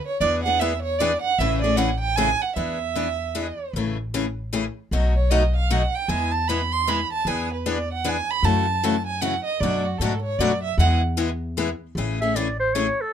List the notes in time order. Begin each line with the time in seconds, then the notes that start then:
0.07 C#5
0.20 E2 E3 B3 D4 G#4 D5
0.43 D4 G#4 F#5
0.48 B3
0.59 E3 B3 D4 G#4 E5
0.82 C#5
0.98 E3 B3 D4 G#4 D5
1.21 F#5
1.38 A1 C#3 E3 A3 C#4 G#4 E5
1.62 C#4 G#4 D5
1.66 A3
1.76 C#3 E3 A3 C#4 G#4 F#5
2.00 G5
2.15 C#3 E3 A3 C#4 G#4 G#5
2.41 F#5
2.56 E2 E3 B3 D4 G#4 E5
2.95 E3 B3 D4 G#4
3.35 E3 B3 D4 G#4
3.73 A1 C#3 E3 A3 C#4 G#4
4.14 C#3 E3 A3 C#4 G#4
4.53 C#3 E3 A3 C#4 G#4
4.91 B1 B2 F#3 A3 D#4 F#4
5.15 C#5
5.30 B2 F#3 A3 D#4 F#4 D#5
5.56 F5
5.70 B2 F#3 A3 D#4 F#4 F#5
5.95 G5
6.08 E2 E3 G#3 B3 E4 G#4 G#5
6.31 A5
6.47 E3 G#3 B3 E4 G#4 B5
6.72 C6
6.87 E3 G#3 B3 E4 G#4 B5
7.12 A5
7.25 E2 E3 B3 D4 G#4 G#5
7.53 B4
7.66 E3 B3 D4 G#4 D5
7.92 F#5
8.04 E3 B3 D4 G#4 G#5
8.31 B5
8.43 F#2 C#3 E3 A3 C#4 F#4 A5
8.83 C#3 E3 A3 C#4 F#4
9.06 G#5
9.21 C#3 E3 A3 C#4 F#4 F#5
9.44 D#5
9.60 F#2 B2 F#3 A3 D4 F#4 D5
9.85 F#4
9.98 G#2 B2 F#3 A3 A4
10.02 D4 F#4
10.21 C#5
10.39 F#2 B2 F#3 A3 D4 F#4 D5
10.63 E5
10.78 E2 E3 G#3 B3 E4 G#4 F#5
11.17 E3 G#3 B3 E4 G#4
11.57 E3 G#3 B3 E4 G#4
11.95 A1 C#3 E3 A3 C#4 G#4
12.21 A3 C#4 G#4 E5
12.36 C#3 E3 A3 C#4 G#4 D5
12.60 C5
12.74 C#3 E3 A3 C#4 G#4 C#5
13.01 A4